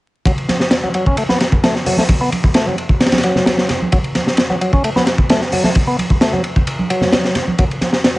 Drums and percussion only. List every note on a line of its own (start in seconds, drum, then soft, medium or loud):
0.25 kick loud
0.25 ride medium
0.38 ride soft
0.49 snare soft
0.49 ride medium
0.49 high conga medium
0.60 snare soft
0.71 snare loud
0.71 ride medium
0.84 high conga medium
0.94 ride medium
1.06 kick medium
1.17 ride medium
1.29 snare soft
1.29 high conga medium
1.40 snare soft
1.40 ride medium
1.52 kick medium
1.64 snare loud
1.64 ride medium
1.64 high conga medium
1.75 snare soft
1.86 open hi-hat medium
1.86 low conga medium
1.97 snare soft
1.97 high conga medium
2.09 kick loud
2.09 ride medium
2.32 ride medium
2.32 high conga medium
2.44 kick medium
2.54 snare loud
2.54 ride medium
2.67 high conga medium
2.67 low conga medium
2.78 ride medium
2.89 kick medium
3.00 snare medium
3.00 ride medium
3.06 snare medium
3.06 ride medium
3.12 snare medium
3.12 ride medium
3.12 high conga medium
3.18 snare medium
3.18 ride medium
3.23 ride medium
3.35 snare soft
3.35 low conga medium
3.46 snare loud
3.46 ride medium
3.46 high conga medium
3.58 snare medium
3.69 snare soft
3.69 ride medium
3.69 low conga medium
3.82 high conga medium
3.92 kick loud
3.92 ride medium
4.04 ride soft
4.15 snare soft
4.15 ride medium
4.15 high conga medium
4.27 snare soft
4.37 snare loud
4.37 ride medium
4.50 high conga medium
4.61 ride medium
4.73 kick medium
4.84 ride medium
4.96 snare soft
4.96 high conga medium
5.07 snare medium
5.07 ride medium
5.18 kick medium
5.29 snare loud
5.29 ride medium
5.29 high conga medium
5.42 snare soft
5.52 open hi-hat medium
5.52 low conga medium
5.64 snare soft
5.64 high conga medium
5.75 kick loud
5.75 ride medium
5.99 ride medium
5.99 high conga medium
6.10 kick medium
6.21 snare loud
6.21 ride medium
6.33 high conga medium
6.33 low conga medium
6.44 ride medium
6.56 kick medium
6.67 ride medium
6.79 high conga medium
6.90 ride medium
7.01 snare soft
7.01 low conga medium
7.13 snare loud
7.13 ride medium
7.13 high conga medium
7.25 snare medium
7.35 snare soft
7.35 ride medium
7.35 low conga medium
7.47 high conga medium
7.58 kick loud
7.58 ride medium
7.71 ride soft
7.81 snare soft
7.81 ride medium
7.81 high conga medium
7.93 snare soft
8.04 snare loud
8.04 ride medium